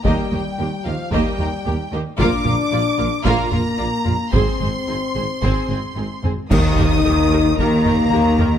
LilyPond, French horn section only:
\new Staff \with { instrumentName = "French horn section" } { \time 4/4 \key ees \major \tempo 4 = 112 g4. f8 g4. r8 | d'2 bes2 | c'2.~ c'8 r8 | ees'2 bes2 | }